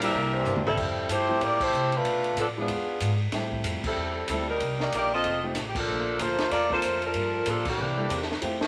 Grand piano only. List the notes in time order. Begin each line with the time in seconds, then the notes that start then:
1.28 F3 A3 C4 E4 G4
2.57 F3 G#3 B3 D4 E4
3.33 G3 A3 C4 E4 G4
4.29 G3 A3 C4 E4 A4
5.43 A3 C4 D#4 F4 G4
6.70 A#3 C4 D4 F4 A4
7.97 G3 A#3 D4 E4 A4
8.42 F3 A3 C4 E4 G4